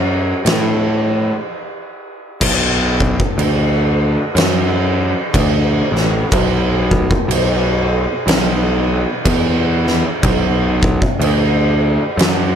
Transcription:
Already playing: picked electric bass F#2
0.45 picked electric bass A2, snare, crash
2.41 picked electric bass B1, kick, crash
3.00 kick
3.20 kick
3.38 picked electric bass D2, crash
4.35 picked electric bass F#2, snare, crash
5.34 picked electric bass D2, kick, crash
5.92 picked electric bass A1, snare
6.32 picked electric bass B1, kick, crash
6.91 kick
7.11 kick
7.28 picked electric bass B1, crash
8.27 picked electric bass B1, snare, crash
9.25 picked electric bass E2, kick, crash
9.87 snare
10.23 picked electric bass B1, kick, crash
10.83 kick
11.02 kick
11.19 picked electric bass D2, crash
12.17 picked electric bass F#2, snare, crash

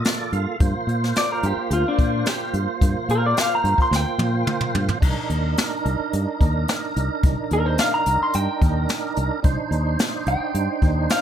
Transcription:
Already playing: tonewheel organ A#3 F4 A4
0.05 tonewheel organ D5, snare, closed hi-hat
0.19 tonewheel organ D5
0.33 fingered electric bass G2, tonewheel organ F5, closed hi-hat
0.59 fingered electric bass G2, tonewheel organ A#3 F4 C5, kick, closed hi-hat
0.87 fingered electric bass A#2, closed hi-hat
1.04 snare
1.16 clean electric guitar D5, snare, closed hi-hat
1.32 clean electric guitar A#4
1.43 fingered electric bass G2, clean electric guitar G4, closed hi-hat
1.57 muted fingered electric bass stroke
1.71 fingered electric bass D2, clean electric guitar F4, closed hi-hat
1.88 clean electric guitar D4
1.98 fingered electric bass A#2, kick, closed hi-hat
2.26 clean electric guitar G4, snare, closed hi-hat
2.53 fingered electric bass G2, closed hi-hat
2.81 fingered electric bass G2, kick, closed hi-hat
3.09 fingered electric bass A#2, clean electric guitar A#4, closed hi-hat
3.26 clean electric guitar D5
3.37 snare, closed hi-hat
3.41 clean electric guitar F5
3.55 clean electric guitar A#5
3.64 fingered electric bass G2, closed hi-hat
3.78 clean electric guitar C6, kick
3.91 fingered electric bass D2, snare
3.96 clean electric guitar G5
4.18 fingered electric bass A#2, high tom
4.47 mid tom
4.61 mid tom
4.75 fingered electric bass G2, floor tom
4.89 floor tom
5.00 fingered electric bass C2, tonewheel organ D4 D#4 A#4, kick, closed hi-hat, crash
5.30 fingered electric bass D#2, closed hi-hat
5.57 snare, closed hi-hat
5.85 fingered electric bass C2, closed hi-hat
6.00 muted fingered electric bass stroke
6.13 fingered electric bass G2, closed hi-hat
6.41 fingered electric bass D#2, kick, closed hi-hat
6.68 snare, closed hi-hat
6.96 fingered electric bass C2, closed hi-hat
7.23 fingered electric bass C2, kick, closed hi-hat
7.51 fingered electric bass D#2, clean electric guitar A#4, closed hi-hat
7.66 clean electric guitar C5
7.78 clean electric guitar F5, snare, closed hi-hat
7.94 clean electric guitar A#5
8.06 fingered electric bass C2, closed hi-hat
8.23 clean electric guitar C6
8.34 fingered electric bass G2, clean electric guitar G5, closed hi-hat
8.62 fingered electric bass D#2, kick, closed hi-hat
8.89 snare, closed hi-hat
9.16 fingered electric bass C2, closed hi-hat
9.42 fingered electric bass C2, tonewheel organ D4 D#4 C5, kick, closed hi-hat
9.71 fingered electric bass D#2, closed hi-hat
9.99 snare, closed hi-hat
10.27 fingered electric bass C2, clean electric guitar G5, closed hi-hat
10.54 fingered electric bass G2, closed hi-hat
10.82 fingered electric bass D#2, kick, closed hi-hat
11.10 clean electric guitar F5, snare, closed hi-hat

